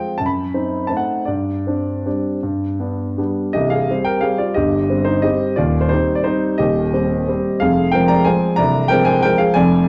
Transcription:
Already playing: G#3 C4 F4 G5
0.18 F#2 A5
0.26 B5
0.54 C4 D#4
0.87 A3 C4 D#4 A5
0.97 F#5
1.25 G2 D5
1.67 C4 D4
2.06 G3 C4 D4
2.43 G2
2.80 B3 D4
3.18 G3 B3 D4
3.53 C1 C2 G4 D#5
3.70 G#4 F5
3.90 G3 C4
4.05 A#4 G5
4.21 G3 C4 G#4 F5
4.38 F4 D5
4.54 G1 G2 G4 D#5
4.90 G3 C4
5.05 D#4 C5
5.22 G3 C4 G4 D#5
5.56 D#1 D#2 F4 D5
5.81 C5
5.89 G3 C4 D#4 C5
6.15 D5
6.24 G3 C4 D#4 C5
6.58 D#1 D#2 G4 D#5
6.93 G3 C4
7.28 G3 C4
7.60 F1 F2 G#4 F5
7.92 F3 G#3 C4 A#4 G5
8.08 D5 A#5
8.25 F3 G#3 C4 C5 G#5
8.56 C1 C2 D5 A#5
8.88 F3 G#3 C4 A#4 G5
9.05 C5 G#5
9.22 F3 G#3 C4 A#4 G5
9.38 G#4 F5
9.54 F1 F2 D5 G#5

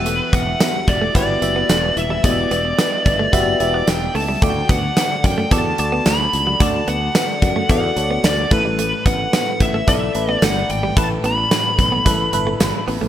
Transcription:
Already playing: E1 E3 B3 E4 F#4 G4 B4 E5
0.06 A3, closed hi-hat
0.33 E1 B3 F#5, kick, closed hi-hat
0.47 muted clean electric guitar stroke
0.60 B3, snare, closed hi-hat, tambourine
0.87 E1 B3 E4 D5, muted clean electric guitar stroke, kick, closed hi-hat
1.01 A3
1.14 G1 E3 B3 E4 F#4 G4 B4 D5, kick, closed hi-hat
1.41 F#1 B3 E4 F#4 G4 E5, muted clean electric guitar stroke, closed hi-hat
1.56 B3
1.69 E1 E3 A3 B3 E4, snare, closed hi-hat, tambourine
1.83 muted clean electric guitar stroke
1.97 D#1 E3 E5, closed hi-hat
2.10 G3
2.23 E1 E3 A3 B3 E4 F#4 G4 D5 D#5, kick, closed hi-hat
2.31 E5
2.51 E1 B3 D5, closed hi-hat
2.65 muted clean electric guitar stroke
2.79 B3, snare, closed hi-hat, tambourine
3.05 G1 B3 E4, muted clean electric guitar stroke, kick, closed hi-hat
3.19 A3
3.32 F#1 E3 B3 E4 F#4 G4 E5, kick, closed hi-hat
3.60 E1 B3 E4 F#4 G4 E5, muted clean electric guitar stroke, closed hi-hat
3.74 B3
3.87 E1 E3 B3 E4 G5, muted clean electric guitar stroke, snare, closed hi-hat, tambourine
4.15 C#2 A3 A5, open hi-hat
4.29 G3
4.41 D2 D3 A3 F4 A4 D5 G5, kick, closed hi-hat
4.45 D4 F#4
4.69 D2 B3 F#5, kick, closed hi-hat
4.83 muted clean electric guitar stroke
4.97 B3, snare, closed hi-hat, tambourine
5.24 F#2 G5, muted clean electric guitar stroke, kick, closed hi-hat
5.38 A3
5.51 E2 D3 A3 B3 D4 F#4 A4 D5 A5, kick, closed hi-hat
5.78 D2 F#4 A4 D5 A5, muted clean electric guitar stroke, closed hi-hat
5.92 B3
6.05 D2 D3 A3 D4 B5, snare, closed hi-hat, tambourine
6.20 muted clean electric guitar stroke
6.33 C#2, closed hi-hat
6.47 F#3
6.60 D2 D3 A3 D4 F#4 A4 D5 A5, kick, closed hi-hat
6.88 D2 B3 F#5, closed hi-hat
7.02 muted clean electric guitar stroke
7.15 B3, snare, closed hi-hat, tambourine
7.41 F#2 A3 D4, muted clean electric guitar stroke, kick, closed hi-hat
7.56 A3
7.69 E2 D3 A3 B3 D4 F#4 A4 D5 F#5, kick, closed hi-hat
7.96 D2 F#4 A4 C#5, muted clean electric guitar stroke, closed hi-hat
8.04 D5
8.11 B3
8.23 D2 D3 A3 D4 D5, muted clean electric guitar stroke, snare, closed hi-hat, tambourine
8.50 A1 A2 E3 A3 E4 A4 B4, kick, closed hi-hat
8.54 A2
8.65 G3
8.79 A3, closed hi-hat
9.06 A1 B3 F#5, kick, closed hi-hat
9.20 muted clean electric guitar stroke
9.33 B3, snare, closed hi-hat, tambourine
9.60 A1 E5, muted clean electric guitar stroke, kick, closed hi-hat
9.74 A3
9.87 B1 A2 E3 A3 B3 E4 A4 D5 E5, kick, closed hi-hat
10.15 A1 E4 A4 B4, muted clean electric guitar stroke, closed hi-hat
10.29 B3
10.33 D5
10.42 G1 A2 E3 A3 F#5, snare, closed hi-hat, tambourine
10.56 muted clean electric guitar stroke
10.69 G#1 A2 G5, closed hi-hat
10.83 G3
10.96 A1 A2 E3 A3 E4 A4 B4 A5, kick, closed hi-hat
11.24 A1 B3 B5, closed hi-hat
11.38 muted clean electric guitar stroke
11.51 A3, snare, closed hi-hat, tambourine
11.78 B1 E3 A3, muted clean electric guitar stroke, kick, closed hi-hat
11.92 B3
12.05 A1 A2 E3 G3 A3 E4 A4 B4, kick, closed hi-hat
12.33 G1 E4 A4 B4, muted clean electric guitar stroke, closed hi-hat
12.47 A3
12.59 G1 A2 E3 A3, muted clean electric guitar stroke, snare, closed hi-hat, tambourine
12.88 A1 B3, open hi-hat
13.01 B1 A3

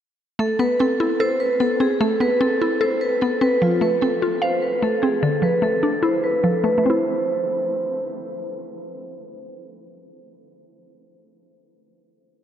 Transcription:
0.39 A3 A4
0.59 B3 B4
0.79 C4 A4
1.00 E4
1.20 A4 C5
1.40 B4
1.60 B3 A4
1.80 C4 G#4
2.01 A3 A4
2.20 B3 B4
2.41 C4 A4
2.61 E4
2.81 A4 C5
3.01 B4
3.21 B3 A4
3.41 C4 B4
3.62 F3 F4
3.81 A3 B4
4.02 C4 A4
4.22 F4
4.42 C5 F5
4.62 B4
4.82 A3 A4
5.02 C4 G#4
5.23 D3 A4
5.42 F3 B4
5.62 A3 A4
5.83 D4
6.03 E4 C5
6.24 B4
6.44 F3 A4
6.64 A3 B4
6.78 A3
6.84 C4 C5
6.90 E4

